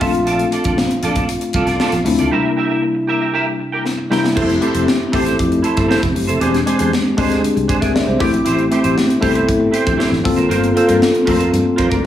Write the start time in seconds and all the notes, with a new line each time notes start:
0.00 A#1 A3 C4 D4 F4 A4 E5 F5, kick, open hi-hat
0.13 muted clean electric guitar stroke, closed hi-hat
0.26 F4 A4 D5, closed hi-hat
0.39 closed hi-hat
0.51 F4 A4 D5, closed hi-hat
0.64 A#1 F4 A4 D5, kick, closed hi-hat
0.77 muted clean electric guitar stroke, snare
0.90 muted clean electric guitar stroke, closed hi-hat
1.03 A#1 F4 A4 D5, closed hi-hat
1.16 F4 A4 D5, kick, closed hi-hat
1.29 muted clean electric guitar stroke, closed hi-hat
1.41 muted clean electric guitar stroke, closed hi-hat
1.53 C2 F4 A4 D5, kick, closed hi-hat
1.67 F4 A4 D5, snare, closed hi-hat
1.80 F4 A4 D5, snare
1.92 A#1, muted clean electric guitar stroke, snare, closed hi-hat
2.04 D2 A3 C4 D4 E4, muted clean electric guitar stroke, open hi-hat
2.18 C#2 F4 A4 D5, closed hi-hat
2.31 C3 G3 A#3 D4 E4 G4 A#4 E5
2.57 G4 A#4 E5
2.70 G4 A#4 E5
2.82 muted clean electric guitar stroke
2.95 muted clean electric guitar stroke
3.07 G4 A#4 E5
3.20 G4 A#4 E5
3.34 G4 A#4 E5
3.46 muted clean electric guitar stroke
3.59 muted clean electric guitar stroke
3.72 G4 A#4 G5
3.85 muted clean electric guitar stroke, snare
3.97 muted clean electric guitar stroke
4.10 C3 G3 A#3 D4 E4 G4 A#4 G5, snare
4.23 muted clean electric guitar stroke, snare
4.35 F1 A3 C4 E4 G4 A4 C5, kick, crash
4.49 snare, closed hi-hat
4.61 A3 C4 E4 G4 A4 C5, closed hi-hat
4.74 F1 E4 A4 C5, closed hi-hat
4.87 muted clean electric guitar stroke, snare
5.00 muted clean electric guitar stroke
5.12 A1 A3 C4 E4 G4 A4 C5, kick, open hi-hat
5.25 E4 A4 C5, snare, closed hi-hat
5.38 F2, muted clean electric guitar stroke, kick, closed hi-hat
5.51 muted clean electric guitar stroke, closed hi-hat
5.62 E4 A4 C5, closed hi-hat
5.76 G1 E4 A4 C5, kick, snare, closed hi-hat
5.88 E4 A4 C5, snare
6.02 F1, muted clean electric guitar stroke, kick, snare, closed hi-hat
6.14 F#1, muted clean electric guitar stroke, open hi-hat
6.27 F1 E4 A4 C5, closed hi-hat
6.40 E1 G#3 C4 D4 G4 G#4 C5, closed hi-hat
6.54 snare, closed hi-hat
6.66 G#3 C4 D4 G4 G#4 C5, closed hi-hat
6.79 E2 D4 G#4 C5, closed hi-hat
6.91 muted clean electric guitar stroke, snare
7.04 muted clean electric guitar stroke
7.17 D2 G#3 C4 D4 G#4 C5, kick, open hi-hat
7.29 D4 G#4 C5, snare, closed hi-hat
7.42 muted clean electric guitar stroke, closed hi-hat
7.55 C2, muted clean electric guitar stroke, closed hi-hat
7.68 D4 G#4 C5, kick, closed hi-hat
7.81 D2 D4 G#4 A#4 D5 E5, kick, snare, closed hi-hat
7.93 G#4 D5, muted clean electric guitar stroke, snare
8.07 C2 G4 C5, muted clean electric guitar stroke
8.19 A1 A3 C4 E4 G4 D5, kick, open hi-hat
8.32 A#1, muted clean electric guitar stroke, closed hi-hat
8.45 A1 E4 G4 C5, closed hi-hat
8.58 closed hi-hat
8.71 A3 C4 E4 G4 C5, closed hi-hat
8.83 A1 E4 G4 C5, closed hi-hat
8.96 muted clean electric guitar stroke, snare
9.09 muted clean electric guitar stroke, closed hi-hat
9.21 C2 A3 B3 E4 G4 A4 C5, kick, open hi-hat
9.27 C4
9.34 E4 G4 C5, closed hi-hat
9.47 A2, muted clean electric guitar stroke, kick, closed hi-hat
9.60 muted clean electric guitar stroke
9.71 E4 G4 C5, closed hi-hat
9.85 A#1 E4 G4 C5, kick, closed hi-hat
9.97 E4 G4 C5, snare
10.10 A1, muted clean electric guitar stroke, snare
10.24 G1 A#3 C4 F4 A4, muted clean electric guitar stroke, kick, open hi-hat
10.36 G#1 F4 A#4 C5, closed hi-hat
10.49 G1 F4 A#4 C5, closed hi-hat
10.64 closed hi-hat
10.75 A#3 C4 F4 A4 A#4 C5, closed hi-hat
10.87 G2 F4 A#4 C5, closed hi-hat
11.00 muted clean electric guitar stroke, snare
11.13 muted clean electric guitar stroke, closed hi-hat
11.26 F2 A3 C4 F4 A4 A#4 C5, kick, open hi-hat
11.33 A#3
11.38 F4 A#4 C5, closed hi-hat
11.51 G2, muted clean electric guitar stroke, closed hi-hat
11.64 muted clean electric guitar stroke
11.76 F2 F4 A#4 C5, kick, closed hi-hat
11.89 D2 F4 A#4 D5, kick, closed hi-hat